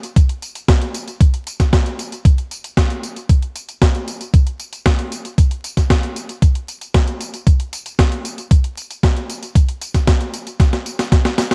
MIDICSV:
0, 0, Header, 1, 2, 480
1, 0, Start_track
1, 0, Tempo, 521739
1, 1110, Time_signature, 4, 2, 24, 8
1, 10624, End_track
2, 0, Start_track
2, 0, Title_t, "Drums"
2, 30, Note_on_c, 9, 42, 40
2, 30, Note_on_c, 9, 54, 39
2, 122, Note_off_c, 9, 42, 0
2, 122, Note_off_c, 9, 54, 0
2, 149, Note_on_c, 9, 36, 127
2, 150, Note_on_c, 9, 42, 95
2, 150, Note_on_c, 9, 54, 29
2, 241, Note_off_c, 9, 36, 0
2, 242, Note_off_c, 9, 42, 0
2, 242, Note_off_c, 9, 54, 0
2, 269, Note_on_c, 9, 42, 41
2, 361, Note_off_c, 9, 42, 0
2, 389, Note_on_c, 9, 42, 39
2, 389, Note_on_c, 9, 54, 70
2, 481, Note_off_c, 9, 42, 0
2, 481, Note_off_c, 9, 54, 0
2, 509, Note_on_c, 9, 42, 42
2, 509, Note_on_c, 9, 54, 38
2, 601, Note_off_c, 9, 42, 0
2, 601, Note_off_c, 9, 54, 0
2, 629, Note_on_c, 9, 36, 127
2, 630, Note_on_c, 9, 38, 123
2, 630, Note_on_c, 9, 42, 92
2, 630, Note_on_c, 9, 54, 29
2, 721, Note_off_c, 9, 36, 0
2, 722, Note_off_c, 9, 38, 0
2, 722, Note_off_c, 9, 42, 0
2, 722, Note_off_c, 9, 54, 0
2, 750, Note_on_c, 9, 42, 43
2, 842, Note_off_c, 9, 42, 0
2, 869, Note_on_c, 9, 42, 68
2, 869, Note_on_c, 9, 54, 68
2, 961, Note_off_c, 9, 42, 0
2, 961, Note_off_c, 9, 54, 0
2, 990, Note_on_c, 9, 42, 39
2, 990, Note_on_c, 9, 54, 38
2, 1082, Note_off_c, 9, 42, 0
2, 1082, Note_off_c, 9, 54, 0
2, 1110, Note_on_c, 9, 36, 122
2, 1111, Note_on_c, 9, 42, 90
2, 1111, Note_on_c, 9, 54, 29
2, 1202, Note_off_c, 9, 36, 0
2, 1203, Note_off_c, 9, 42, 0
2, 1203, Note_off_c, 9, 54, 0
2, 1231, Note_on_c, 9, 42, 39
2, 1323, Note_off_c, 9, 42, 0
2, 1351, Note_on_c, 9, 42, 70
2, 1351, Note_on_c, 9, 54, 71
2, 1443, Note_off_c, 9, 42, 0
2, 1443, Note_off_c, 9, 54, 0
2, 1470, Note_on_c, 9, 36, 67
2, 1470, Note_on_c, 9, 38, 40
2, 1470, Note_on_c, 9, 42, 40
2, 1470, Note_on_c, 9, 54, 38
2, 1562, Note_off_c, 9, 36, 0
2, 1562, Note_off_c, 9, 38, 0
2, 1562, Note_off_c, 9, 42, 0
2, 1562, Note_off_c, 9, 54, 0
2, 1590, Note_on_c, 9, 36, 121
2, 1591, Note_on_c, 9, 38, 127
2, 1591, Note_on_c, 9, 42, 94
2, 1591, Note_on_c, 9, 54, 29
2, 1682, Note_off_c, 9, 36, 0
2, 1683, Note_off_c, 9, 38, 0
2, 1683, Note_off_c, 9, 42, 0
2, 1683, Note_off_c, 9, 54, 0
2, 1711, Note_on_c, 9, 42, 39
2, 1803, Note_off_c, 9, 42, 0
2, 1831, Note_on_c, 9, 42, 65
2, 1831, Note_on_c, 9, 54, 66
2, 1923, Note_off_c, 9, 42, 0
2, 1923, Note_off_c, 9, 54, 0
2, 1952, Note_on_c, 9, 42, 39
2, 1952, Note_on_c, 9, 54, 38
2, 2044, Note_off_c, 9, 42, 0
2, 2044, Note_off_c, 9, 54, 0
2, 2070, Note_on_c, 9, 36, 127
2, 2072, Note_on_c, 9, 42, 94
2, 2072, Note_on_c, 9, 54, 29
2, 2162, Note_off_c, 9, 36, 0
2, 2164, Note_off_c, 9, 42, 0
2, 2164, Note_off_c, 9, 54, 0
2, 2191, Note_on_c, 9, 42, 39
2, 2283, Note_off_c, 9, 42, 0
2, 2312, Note_on_c, 9, 42, 38
2, 2312, Note_on_c, 9, 54, 69
2, 2404, Note_off_c, 9, 42, 0
2, 2404, Note_off_c, 9, 54, 0
2, 2431, Note_on_c, 9, 42, 41
2, 2431, Note_on_c, 9, 54, 39
2, 2523, Note_off_c, 9, 42, 0
2, 2523, Note_off_c, 9, 54, 0
2, 2550, Note_on_c, 9, 36, 127
2, 2551, Note_on_c, 9, 38, 123
2, 2551, Note_on_c, 9, 42, 89
2, 2551, Note_on_c, 9, 54, 28
2, 2642, Note_off_c, 9, 36, 0
2, 2643, Note_off_c, 9, 38, 0
2, 2643, Note_off_c, 9, 42, 0
2, 2643, Note_off_c, 9, 54, 0
2, 2671, Note_on_c, 9, 42, 41
2, 2763, Note_off_c, 9, 42, 0
2, 2792, Note_on_c, 9, 42, 67
2, 2792, Note_on_c, 9, 54, 67
2, 2884, Note_off_c, 9, 42, 0
2, 2884, Note_off_c, 9, 54, 0
2, 2911, Note_on_c, 9, 42, 38
2, 2911, Note_on_c, 9, 54, 36
2, 3003, Note_off_c, 9, 42, 0
2, 3003, Note_off_c, 9, 54, 0
2, 3030, Note_on_c, 9, 36, 119
2, 3030, Note_on_c, 9, 42, 91
2, 3030, Note_on_c, 9, 54, 29
2, 3122, Note_off_c, 9, 36, 0
2, 3122, Note_off_c, 9, 42, 0
2, 3122, Note_off_c, 9, 54, 0
2, 3150, Note_on_c, 9, 42, 39
2, 3242, Note_off_c, 9, 42, 0
2, 3271, Note_on_c, 9, 42, 65
2, 3271, Note_on_c, 9, 54, 69
2, 3363, Note_off_c, 9, 42, 0
2, 3363, Note_off_c, 9, 54, 0
2, 3390, Note_on_c, 9, 42, 39
2, 3390, Note_on_c, 9, 54, 39
2, 3482, Note_off_c, 9, 42, 0
2, 3482, Note_off_c, 9, 54, 0
2, 3510, Note_on_c, 9, 36, 122
2, 3511, Note_on_c, 9, 38, 122
2, 3511, Note_on_c, 9, 42, 93
2, 3511, Note_on_c, 9, 54, 29
2, 3602, Note_off_c, 9, 36, 0
2, 3603, Note_off_c, 9, 38, 0
2, 3603, Note_off_c, 9, 42, 0
2, 3603, Note_off_c, 9, 54, 0
2, 3631, Note_on_c, 9, 42, 38
2, 3723, Note_off_c, 9, 42, 0
2, 3751, Note_on_c, 9, 42, 65
2, 3751, Note_on_c, 9, 54, 65
2, 3843, Note_off_c, 9, 42, 0
2, 3843, Note_off_c, 9, 54, 0
2, 3871, Note_on_c, 9, 42, 38
2, 3871, Note_on_c, 9, 54, 39
2, 3963, Note_off_c, 9, 42, 0
2, 3963, Note_off_c, 9, 54, 0
2, 3990, Note_on_c, 9, 36, 123
2, 3990, Note_on_c, 9, 42, 91
2, 3990, Note_on_c, 9, 54, 29
2, 4082, Note_off_c, 9, 36, 0
2, 4082, Note_off_c, 9, 42, 0
2, 4082, Note_off_c, 9, 54, 0
2, 4110, Note_on_c, 9, 42, 39
2, 4202, Note_off_c, 9, 42, 0
2, 4229, Note_on_c, 9, 42, 36
2, 4229, Note_on_c, 9, 54, 69
2, 4321, Note_off_c, 9, 42, 0
2, 4321, Note_off_c, 9, 54, 0
2, 4349, Note_on_c, 9, 42, 38
2, 4349, Note_on_c, 9, 54, 39
2, 4441, Note_off_c, 9, 42, 0
2, 4441, Note_off_c, 9, 54, 0
2, 4469, Note_on_c, 9, 38, 119
2, 4469, Note_on_c, 9, 42, 87
2, 4469, Note_on_c, 9, 54, 28
2, 4470, Note_on_c, 9, 36, 119
2, 4561, Note_off_c, 9, 38, 0
2, 4561, Note_off_c, 9, 42, 0
2, 4561, Note_off_c, 9, 54, 0
2, 4562, Note_off_c, 9, 36, 0
2, 4589, Note_on_c, 9, 42, 39
2, 4681, Note_off_c, 9, 42, 0
2, 4709, Note_on_c, 9, 42, 65
2, 4709, Note_on_c, 9, 54, 69
2, 4801, Note_off_c, 9, 42, 0
2, 4801, Note_off_c, 9, 54, 0
2, 4830, Note_on_c, 9, 42, 37
2, 4830, Note_on_c, 9, 54, 37
2, 4922, Note_off_c, 9, 42, 0
2, 4922, Note_off_c, 9, 54, 0
2, 4949, Note_on_c, 9, 36, 113
2, 4950, Note_on_c, 9, 42, 88
2, 4950, Note_on_c, 9, 54, 30
2, 5041, Note_off_c, 9, 36, 0
2, 5042, Note_off_c, 9, 42, 0
2, 5042, Note_off_c, 9, 54, 0
2, 5069, Note_on_c, 9, 42, 39
2, 5161, Note_off_c, 9, 42, 0
2, 5190, Note_on_c, 9, 42, 67
2, 5190, Note_on_c, 9, 54, 73
2, 5282, Note_off_c, 9, 42, 0
2, 5282, Note_off_c, 9, 54, 0
2, 5309, Note_on_c, 9, 36, 61
2, 5310, Note_on_c, 9, 38, 36
2, 5310, Note_on_c, 9, 42, 39
2, 5310, Note_on_c, 9, 54, 41
2, 5401, Note_off_c, 9, 36, 0
2, 5402, Note_off_c, 9, 38, 0
2, 5402, Note_off_c, 9, 42, 0
2, 5402, Note_off_c, 9, 54, 0
2, 5429, Note_on_c, 9, 36, 117
2, 5430, Note_on_c, 9, 38, 120
2, 5430, Note_on_c, 9, 42, 92
2, 5430, Note_on_c, 9, 54, 30
2, 5521, Note_off_c, 9, 36, 0
2, 5522, Note_off_c, 9, 38, 0
2, 5522, Note_off_c, 9, 42, 0
2, 5522, Note_off_c, 9, 54, 0
2, 5550, Note_on_c, 9, 42, 38
2, 5642, Note_off_c, 9, 42, 0
2, 5670, Note_on_c, 9, 42, 63
2, 5670, Note_on_c, 9, 54, 69
2, 5762, Note_off_c, 9, 42, 0
2, 5762, Note_off_c, 9, 54, 0
2, 5789, Note_on_c, 9, 42, 38
2, 5789, Note_on_c, 9, 54, 40
2, 5881, Note_off_c, 9, 42, 0
2, 5881, Note_off_c, 9, 54, 0
2, 5909, Note_on_c, 9, 36, 119
2, 5909, Note_on_c, 9, 42, 89
2, 5909, Note_on_c, 9, 54, 30
2, 6001, Note_off_c, 9, 36, 0
2, 6001, Note_off_c, 9, 42, 0
2, 6001, Note_off_c, 9, 54, 0
2, 6029, Note_on_c, 9, 42, 38
2, 6121, Note_off_c, 9, 42, 0
2, 6149, Note_on_c, 9, 42, 37
2, 6149, Note_on_c, 9, 54, 71
2, 6241, Note_off_c, 9, 42, 0
2, 6241, Note_off_c, 9, 54, 0
2, 6269, Note_on_c, 9, 42, 38
2, 6269, Note_on_c, 9, 54, 40
2, 6361, Note_off_c, 9, 42, 0
2, 6361, Note_off_c, 9, 54, 0
2, 6388, Note_on_c, 9, 38, 111
2, 6388, Note_on_c, 9, 42, 90
2, 6388, Note_on_c, 9, 54, 29
2, 6389, Note_on_c, 9, 36, 122
2, 6480, Note_off_c, 9, 38, 0
2, 6480, Note_off_c, 9, 42, 0
2, 6480, Note_off_c, 9, 54, 0
2, 6481, Note_off_c, 9, 36, 0
2, 6509, Note_on_c, 9, 42, 38
2, 6601, Note_off_c, 9, 42, 0
2, 6629, Note_on_c, 9, 42, 64
2, 6629, Note_on_c, 9, 54, 70
2, 6721, Note_off_c, 9, 42, 0
2, 6721, Note_off_c, 9, 54, 0
2, 6749, Note_on_c, 9, 42, 37
2, 6749, Note_on_c, 9, 54, 40
2, 6841, Note_off_c, 9, 42, 0
2, 6841, Note_off_c, 9, 54, 0
2, 6869, Note_on_c, 9, 36, 117
2, 6870, Note_on_c, 9, 42, 91
2, 6870, Note_on_c, 9, 54, 31
2, 6961, Note_off_c, 9, 36, 0
2, 6962, Note_off_c, 9, 42, 0
2, 6962, Note_off_c, 9, 54, 0
2, 6990, Note_on_c, 9, 42, 41
2, 7082, Note_off_c, 9, 42, 0
2, 7110, Note_on_c, 9, 42, 67
2, 7110, Note_on_c, 9, 54, 76
2, 7202, Note_off_c, 9, 42, 0
2, 7202, Note_off_c, 9, 54, 0
2, 7230, Note_on_c, 9, 42, 40
2, 7230, Note_on_c, 9, 54, 42
2, 7322, Note_off_c, 9, 42, 0
2, 7322, Note_off_c, 9, 54, 0
2, 7349, Note_on_c, 9, 36, 112
2, 7350, Note_on_c, 9, 38, 114
2, 7350, Note_on_c, 9, 42, 91
2, 7350, Note_on_c, 9, 54, 31
2, 7441, Note_off_c, 9, 36, 0
2, 7442, Note_off_c, 9, 38, 0
2, 7442, Note_off_c, 9, 42, 0
2, 7442, Note_off_c, 9, 54, 0
2, 7470, Note_on_c, 9, 42, 39
2, 7562, Note_off_c, 9, 42, 0
2, 7590, Note_on_c, 9, 42, 66
2, 7590, Note_on_c, 9, 54, 73
2, 7682, Note_off_c, 9, 42, 0
2, 7682, Note_off_c, 9, 54, 0
2, 7710, Note_on_c, 9, 42, 41
2, 7710, Note_on_c, 9, 54, 40
2, 7802, Note_off_c, 9, 42, 0
2, 7802, Note_off_c, 9, 54, 0
2, 7829, Note_on_c, 9, 36, 122
2, 7830, Note_on_c, 9, 42, 91
2, 7830, Note_on_c, 9, 54, 31
2, 7921, Note_off_c, 9, 36, 0
2, 7922, Note_off_c, 9, 42, 0
2, 7922, Note_off_c, 9, 54, 0
2, 7950, Note_on_c, 9, 42, 40
2, 8042, Note_off_c, 9, 42, 0
2, 8072, Note_on_c, 9, 42, 37
2, 8072, Note_on_c, 9, 54, 74
2, 8164, Note_off_c, 9, 42, 0
2, 8164, Note_off_c, 9, 54, 0
2, 8192, Note_on_c, 9, 42, 41
2, 8192, Note_on_c, 9, 54, 41
2, 8284, Note_off_c, 9, 42, 0
2, 8284, Note_off_c, 9, 54, 0
2, 8309, Note_on_c, 9, 36, 120
2, 8312, Note_on_c, 9, 38, 112
2, 8312, Note_on_c, 9, 42, 88
2, 8312, Note_on_c, 9, 54, 31
2, 8401, Note_off_c, 9, 36, 0
2, 8404, Note_off_c, 9, 38, 0
2, 8404, Note_off_c, 9, 42, 0
2, 8404, Note_off_c, 9, 54, 0
2, 8431, Note_on_c, 9, 42, 41
2, 8523, Note_off_c, 9, 42, 0
2, 8551, Note_on_c, 9, 42, 68
2, 8551, Note_on_c, 9, 54, 74
2, 8643, Note_off_c, 9, 42, 0
2, 8643, Note_off_c, 9, 54, 0
2, 8671, Note_on_c, 9, 42, 39
2, 8671, Note_on_c, 9, 54, 39
2, 8763, Note_off_c, 9, 42, 0
2, 8763, Note_off_c, 9, 54, 0
2, 8789, Note_on_c, 9, 36, 115
2, 8791, Note_on_c, 9, 42, 92
2, 8791, Note_on_c, 9, 54, 32
2, 8881, Note_off_c, 9, 36, 0
2, 8883, Note_off_c, 9, 42, 0
2, 8883, Note_off_c, 9, 54, 0
2, 8911, Note_on_c, 9, 42, 42
2, 9003, Note_off_c, 9, 42, 0
2, 9030, Note_on_c, 9, 42, 70
2, 9030, Note_on_c, 9, 54, 76
2, 9122, Note_off_c, 9, 42, 0
2, 9122, Note_off_c, 9, 54, 0
2, 9149, Note_on_c, 9, 36, 60
2, 9150, Note_on_c, 9, 38, 37
2, 9150, Note_on_c, 9, 42, 42
2, 9150, Note_on_c, 9, 54, 42
2, 9241, Note_off_c, 9, 36, 0
2, 9242, Note_off_c, 9, 38, 0
2, 9242, Note_off_c, 9, 42, 0
2, 9242, Note_off_c, 9, 54, 0
2, 9269, Note_on_c, 9, 36, 115
2, 9269, Note_on_c, 9, 38, 117
2, 9269, Note_on_c, 9, 42, 95
2, 9269, Note_on_c, 9, 54, 33
2, 9361, Note_off_c, 9, 36, 0
2, 9361, Note_off_c, 9, 38, 0
2, 9361, Note_off_c, 9, 42, 0
2, 9361, Note_off_c, 9, 54, 0
2, 9390, Note_on_c, 9, 42, 41
2, 9482, Note_off_c, 9, 42, 0
2, 9509, Note_on_c, 9, 42, 67
2, 9509, Note_on_c, 9, 54, 72
2, 9601, Note_off_c, 9, 42, 0
2, 9601, Note_off_c, 9, 54, 0
2, 9630, Note_on_c, 9, 42, 41
2, 9630, Note_on_c, 9, 54, 42
2, 9722, Note_off_c, 9, 42, 0
2, 9722, Note_off_c, 9, 54, 0
2, 9749, Note_on_c, 9, 36, 121
2, 9751, Note_on_c, 9, 38, 62
2, 9751, Note_on_c, 9, 42, 96
2, 9751, Note_on_c, 9, 54, 32
2, 9841, Note_off_c, 9, 36, 0
2, 9843, Note_off_c, 9, 38, 0
2, 9843, Note_off_c, 9, 42, 0
2, 9843, Note_off_c, 9, 54, 0
2, 9871, Note_on_c, 9, 38, 58
2, 9871, Note_on_c, 9, 42, 40
2, 9963, Note_off_c, 9, 38, 0
2, 9963, Note_off_c, 9, 42, 0
2, 9991, Note_on_c, 9, 42, 39
2, 9991, Note_on_c, 9, 54, 76
2, 10083, Note_off_c, 9, 42, 0
2, 10083, Note_off_c, 9, 54, 0
2, 10111, Note_on_c, 9, 38, 68
2, 10111, Note_on_c, 9, 42, 41
2, 10111, Note_on_c, 9, 54, 43
2, 10203, Note_off_c, 9, 38, 0
2, 10203, Note_off_c, 9, 42, 0
2, 10203, Note_off_c, 9, 54, 0
2, 10229, Note_on_c, 9, 36, 118
2, 10231, Note_on_c, 9, 38, 87
2, 10231, Note_on_c, 9, 42, 90
2, 10231, Note_on_c, 9, 54, 32
2, 10321, Note_off_c, 9, 36, 0
2, 10323, Note_off_c, 9, 38, 0
2, 10323, Note_off_c, 9, 42, 0
2, 10323, Note_off_c, 9, 54, 0
2, 10350, Note_on_c, 9, 38, 81
2, 10350, Note_on_c, 9, 42, 43
2, 10442, Note_off_c, 9, 38, 0
2, 10442, Note_off_c, 9, 42, 0
2, 10470, Note_on_c, 9, 38, 101
2, 10470, Note_on_c, 9, 42, 67
2, 10470, Note_on_c, 9, 54, 74
2, 10562, Note_off_c, 9, 38, 0
2, 10562, Note_off_c, 9, 42, 0
2, 10562, Note_off_c, 9, 54, 0
2, 10590, Note_on_c, 9, 38, 85
2, 10590, Note_on_c, 9, 42, 39
2, 10590, Note_on_c, 9, 54, 40
2, 10624, Note_off_c, 9, 38, 0
2, 10624, Note_off_c, 9, 42, 0
2, 10624, Note_off_c, 9, 54, 0
2, 10624, End_track
0, 0, End_of_file